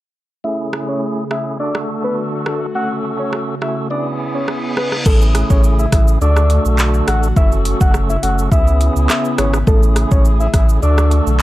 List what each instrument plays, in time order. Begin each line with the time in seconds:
0.44 analog synth pad C#3 A3 G#4, tonewheel organ A3 C#4 E4 G#4, soft synth lead E5
0.73 cross-stick
0.88 soft synth lead C#5
1.31 tonewheel organ A3 C#4 E4 G#4, soft synth lead E5, cross-stick
1.59 analog synth pad D3 A3 F#4, tonewheel organ A3 D4 F#4 A4, soft synth lead D5
1.75 cross-stick
2.04 soft synth lead B4
2.46 soft synth lead A4, cross-stick
2.75 analog synth pad C#3, tonewheel organ A3 C#4 F#4 A4, soft synth lead F#5
3.19 soft synth lead C#5
3.33 cross-stick
3.61 tonewheel organ A3 C#4 F#4 A4, soft synth lead E5, cross-stick
3.90 tonewheel organ B3 C#4 E4 G#4, analog synth pad B3 E4, soft synth lead D5, reverse cymbal
4.35 soft synth lead C#5
4.48 cross-stick
4.77 soft synth lead B4, cross-stick
4.92 cross-stick
5.06 sub bass A1, analog synth pad C#3 A3 G#4, tonewheel organ A3 C#4 E4 G#4, soft synth lead A4, kick, crash, shaker
5.22 shaker
5.35 cross-stick, closed hi-hat, shaker
5.50 sub bass A1, soft synth lead C#5, kick, shaker
5.64 shaker
5.79 soft synth lead E5, shaker
5.92 sub bass A1, tonewheel organ A3 C#4 E4 G#4, soft synth lead E5, kick, cross-stick, closed hi-hat, shaker
6.08 shaker
6.21 sub bass D2, analog synth pad D3 A3 F#4, tonewheel organ A3 D4 F#4 A4, soft synth lead D5, shaker
6.36 cross-stick, shaker
6.50 closed hi-hat, shaker
6.65 sub bass B1, shaker
6.79 clap, shaker
6.94 shaker
7.08 sub bass A1, soft synth lead F#5, cross-stick, closed hi-hat, shaker
7.23 shaker
7.36 sub bass F#1, analog synth pad C#3, tonewheel organ A3 C#4 F#4 A4, soft synth lead E5, kick, shaker
7.52 shaker
7.65 closed hi-hat, shaker
7.81 sub bass F#1, soft synth lead F#5, kick, shaker
7.94 cross-stick, shaker
8.09 soft synth lead E5, shaker
8.23 sub bass F#1, tonewheel organ A3 C#4 F#4 A4, soft synth lead F#5, closed hi-hat, shaker
8.38 shaker
8.52 sub bass C#2, tonewheel organ B3 C#4 E4 G#4, analog synth pad B3 E4, soft synth lead E5, kick, shaker
8.67 shaker
8.81 closed hi-hat, shaker
8.96 sub bass C#2, shaker
9.09 soft synth lead E5, cross-stick, clap, shaker
9.25 shaker
9.38 sub bass G#1, soft synth lead C#5, cross-stick, closed hi-hat, shaker
9.53 cross-stick, shaker
9.67 sub bass A1, tonewheel organ A3 C#4 E4 G#4, analog synth pad A3 G#4, soft synth lead A4, kick, shaker
9.83 shaker
9.96 cross-stick, closed hi-hat, shaker
10.11 sub bass A1, soft synth lead C#5, kick, shaker
10.25 shaker
10.40 soft synth lead E5, shaker
10.54 sub bass A1, tonewheel organ A3 C#4 E4 G#4, soft synth lead E5, kick, cross-stick, closed hi-hat, shaker
10.69 shaker
10.82 sub bass D2, analog synth pad D3 F#4, tonewheel organ A3 D4 F#4 A4, soft synth lead D5, shaker
10.98 cross-stick, shaker
11.11 closed hi-hat, shaker
11.27 sub bass B1, shaker